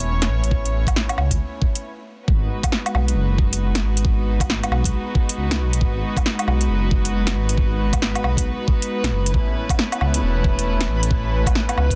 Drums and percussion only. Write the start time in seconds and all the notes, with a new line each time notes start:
0.22 snare, closed hi-hat
0.44 closed hi-hat
0.51 kick
0.66 closed hi-hat
0.87 kick, closed hi-hat, low woodblock
0.96 snare
1.09 closed hi-hat, low woodblock
1.18 low woodblock
1.31 kick, closed hi-hat
1.62 kick
1.75 closed hi-hat
2.28 kick
2.63 kick, closed hi-hat, low woodblock
2.72 snare
2.86 closed hi-hat, low woodblock
2.95 low woodblock
3.08 closed hi-hat
3.38 kick
3.53 closed hi-hat
3.75 snare, closed hi-hat
3.97 closed hi-hat
4.05 kick
4.40 kick, closed hi-hat, low woodblock
4.50 snare
4.63 closed hi-hat, low woodblock
4.72 low woodblock
4.84 kick, closed hi-hat
5.15 kick
5.29 closed hi-hat
5.51 snare, closed hi-hat
5.73 closed hi-hat
5.81 kick
6.17 kick, closed hi-hat, low woodblock
6.26 snare
6.39 closed hi-hat, low woodblock
6.48 low woodblock
6.61 closed hi-hat
6.91 kick
7.05 closed hi-hat
7.27 snare, closed hi-hat
7.49 closed hi-hat
7.57 kick
7.93 kick, closed hi-hat, low woodblock
8.02 snare
8.15 closed hi-hat, low woodblock
8.24 low woodblock
8.37 kick, closed hi-hat
8.68 kick
8.82 closed hi-hat
9.04 snare, closed hi-hat
9.26 closed hi-hat
9.34 kick
9.69 kick, closed hi-hat, low woodblock
9.79 snare
9.92 closed hi-hat, low woodblock
10.01 low woodblock
10.14 closed hi-hat
10.44 kick
10.59 closed hi-hat
10.81 snare, closed hi-hat
11.03 closed hi-hat
11.11 kick
11.46 kick, closed hi-hat, low woodblock
11.55 snare
11.69 closed hi-hat, low woodblock
11.78 low woodblock
11.91 kick, closed hi-hat